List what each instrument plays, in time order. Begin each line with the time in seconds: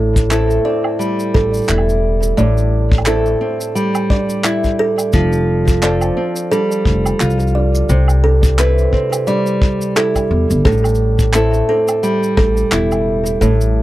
Already playing: upright bass A1, nylon-string guitar A2
0.16 kick, shaker
0.30 nylon-string guitar C4 E4 A4, clap, shaker
0.50 shaker
0.65 nylon-string guitar C4, kalimba D5
0.84 low woodblock
0.99 nylon-string guitar G3, shaker
1.19 shaker
1.34 upright bass A1, kalimba A4, kick
1.54 shaker
1.57 shaker
1.62 shaker
1.64 shaker
1.66 nylon-string guitar E4, shaker
1.69 upright bass E1, clap, shaker
1.78 low woodblock
1.89 shaker
2.23 shaker
2.37 upright bass A1, nylon-string guitar A2, kalimba D5, shaker
2.57 shaker
2.92 kick
2.98 low woodblock
3.06 nylon-string guitar C4 E4 A4, kalimba A4, clap, shaker
3.26 shaker
3.41 nylon-string guitar C4
3.61 shaker
3.75 nylon-string guitar G3, shaker
3.95 low woodblock, shaker
4.10 kalimba D5, kick
4.29 shaker
4.44 nylon-string guitar E4, clap, shaker
4.64 kick, shaker
4.79 kalimba A4
4.98 low woodblock, shaker
5.13 upright bass F1, nylon-string guitar F3, kick, shaker
5.33 shaker
5.68 kick, shaker
5.82 nylon-string guitar C4 F4 A4, kalimba D5, clap, shaker
6.01 low woodblock, shaker
6.17 nylon-string guitar C4
6.36 shaker
6.52 nylon-string guitar G3, kalimba A4, shaker
6.71 shaker
6.85 upright bass F1, kick
7.06 low woodblock, shaker
7.20 upright bass C2, nylon-string guitar F4, clap, shaker
7.30 shaker
7.40 shaker
7.47 shaker
7.55 kalimba D5
7.75 shaker
7.89 upright bass C2, nylon-string guitar C3, shaker
8.08 low woodblock, shaker
8.24 kalimba A4
8.43 kick, shaker
8.58 nylon-string guitar C4 E4 B4, clap, shaker
8.78 shaker
8.93 nylon-string guitar C4, kick
9.12 low woodblock, shaker
9.27 nylon-string guitar G3, kalimba D5, shaker
9.46 shaker
9.62 kick
9.81 shaker
9.96 nylon-string guitar E4, kalimba A4, clap, shaker
10.15 kick, low woodblock, shaker
10.31 upright bass E2
10.50 upright bass G1, shaker
10.65 upright bass A1, nylon-string guitar A2, kalimba A4, kick, shaker
10.72 shaker
10.77 shaker
10.84 low woodblock, shaker
10.88 shaker
10.95 shaker
11.19 kick, shaker
11.33 nylon-string guitar C4 E4 A4, clap, shaker
11.54 shaker
11.69 nylon-string guitar C4, kalimba A4
11.88 low woodblock, shaker
12.03 nylon-string guitar G3, shaker
12.23 shaker
12.37 upright bass A1, kalimba A4, kick
12.57 shaker
12.72 upright bass E1, nylon-string guitar E4, clap, shaker
12.91 low woodblock, shaker
13.26 shaker
13.41 upright bass A1, nylon-string guitar A2, kalimba A4, shaker
13.61 shaker